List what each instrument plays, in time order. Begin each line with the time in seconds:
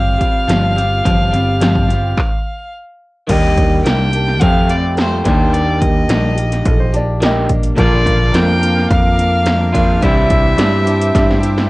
Already playing: picked electric bass G1, clean electric guitar G3 F4, steel-string acoustic guitar G3 C4 F4 G4, fiddle F5
0.19 clean electric guitar G3, kick, closed hi-hat
0.48 picked electric bass G1, steel-string acoustic guitar G2 F3 G3 C4 F4 G4, snare, closed hi-hat
0.76 steel-string acoustic guitar C4 F4 G4, closed hi-hat
0.80 steel-string acoustic guitar G3
1.05 picked electric bass G1, steel-string acoustic guitar G2 F3 G3 C4 F4 G4, kick, closed hi-hat
1.31 picked electric bass G1, clean electric guitar G3, steel-string acoustic guitar C4 F4 G4, closed hi-hat
1.36 steel-string acoustic guitar G3
1.60 steel-string acoustic guitar G2 F3 G3 C4 F4 G4, snare, closed hi-hat
1.75 kick
1.88 steel-string acoustic guitar G3 C4 F4 G4, closed hi-hat
2.17 kick, clap
3.27 picked electric bass D#2, steel-string acoustic guitar D#3 G3 A#3 G4, clean electric guitar D4, fiddle D#5, kick, closed hi-hat, crash
3.57 kick, closed hi-hat
3.84 picked electric bass C2, steel-string acoustic guitar G3 A#3 D4 G4, fiddle G5, snare, closed hi-hat
4.12 steel-string acoustic guitar A#3 D4 G4, closed hi-hat
4.28 snare
4.40 picked electric bass F2, steel-string acoustic guitar F3 A3 C4 F4 G4, fiddle F5, kick, closed hi-hat
4.67 steel-string acoustic guitar C4 F4 G4, fiddle D5, closed hi-hat
4.95 steel-string acoustic guitar A3 C4 F4 G4, fiddle C5, snare, closed hi-hat
5.24 picked electric bass D#2, steel-string acoustic guitar D#3 G3 A#3 D4 G4, fiddle C5, kick, closed hi-hat
5.54 fiddle D5, closed hi-hat
5.81 fiddle D#5, kick, closed hi-hat
6.08 picked electric bass A#1, steel-string acoustic guitar G3 A#3 D4 G4, snare, closed hi-hat
6.35 steel-string acoustic guitar A#3 G4, closed hi-hat
6.52 snare, closed hi-hat
6.65 picked electric bass A#1, upright piano A4, kick, closed hi-hat
6.80 upright piano C5
6.92 steel-string acoustic guitar A#3 D4 G4, upright piano D5, closed hi-hat
7.21 clean electric guitar D#3 D4, steel-string acoustic guitar G3 A#3 G4, upright piano D#5, snare, closed hi-hat
7.49 kick, closed hi-hat
7.63 closed hi-hat
7.76 picked electric bass A#1, steel-string acoustic guitar A#2 D3 F3 A#3 D4 A#4, clean electric guitar F4, accordion A#4 F5 D6, fiddle D5, kick, closed hi-hat
8.06 kick, closed hi-hat
8.31 picked electric bass F2, steel-string acoustic guitar F3 A#3 D4 A#4, fiddle G5, snare, closed hi-hat
8.59 steel-string acoustic guitar F3 A#3 D4 A#4, closed hi-hat
8.78 snare
8.90 picked electric bass F2, fiddle F5, kick, closed hi-hat
9.16 steel-string acoustic guitar F3 A#3 D4 A#4, closed hi-hat
9.43 steel-string acoustic guitar F3 A#3 D4 A#4, closed hi-hat
9.47 snare
9.73 clean electric guitar A#2 F3 A#3 D4 F4, fiddle F5, kick, closed hi-hat
10.01 picked electric bass C2, steel-string acoustic guitar C3 G3 D4 E4 G4, clean electric guitar E3, accordion C5 E5 D6, fiddle E5, kick, closed hi-hat
10.30 kick, closed hi-hat
10.56 picked electric bass G2, steel-string acoustic guitar G3 D4 E4 G4, snare, closed hi-hat
10.85 steel-string acoustic guitar D4 E4 G4, closed hi-hat
11.01 closed hi-hat
11.15 picked electric bass G2, kick, snare, closed hi-hat
11.30 snare
11.40 steel-string acoustic guitar D4 E4 G4, closed hi-hat
11.58 snare